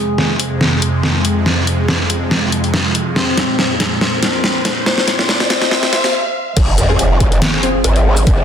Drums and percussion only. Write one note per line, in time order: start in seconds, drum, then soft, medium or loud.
0.18 snare soft
0.40 closed hi-hat medium
0.61 snare medium
0.82 closed hi-hat medium
1.03 snare medium
1.25 closed hi-hat medium
1.46 snare medium
1.67 closed hi-hat medium
1.88 snare medium
2.10 closed hi-hat medium
2.31 snare medium
2.52 closed hi-hat medium
2.64 closed hi-hat soft
2.74 snare medium
2.95 closed hi-hat medium
3.16 snare medium
3.37 snare medium
3.37 closed hi-hat medium
3.59 snare medium
3.80 snare medium
3.80 closed hi-hat medium
4.01 snare medium
4.23 snare medium
4.23 closed hi-hat medium
4.44 snare medium
4.65 snare medium
4.65 closed hi-hat medium
4.86 snare medium
4.98 snare medium
5.08 snare medium
5.08 closed hi-hat medium
5.19 snare medium
5.29 snare loud
5.40 snare medium
5.50 snare loud
5.50 closed hi-hat medium
5.62 snare medium
5.71 snare loud
5.83 snare medium
5.93 snare loud
5.93 closed hi-hat medium
6.04 snare medium
6.04 closed hi-hat soft
6.57 kick loud
6.57 closed hi-hat medium
6.57 crash loud
6.78 closed hi-hat medium
6.78 shaker medium
6.99 closed hi-hat medium
7.20 kick medium
7.20 closed hi-hat medium
7.32 closed hi-hat soft
7.42 snare loud
7.42 closed hi-hat medium
7.63 closed hi-hat medium
7.84 closed hi-hat medium
7.96 closed hi-hat soft
8.17 closed hi-hat medium
8.17 shaker medium
8.27 kick loud
8.27 closed hi-hat medium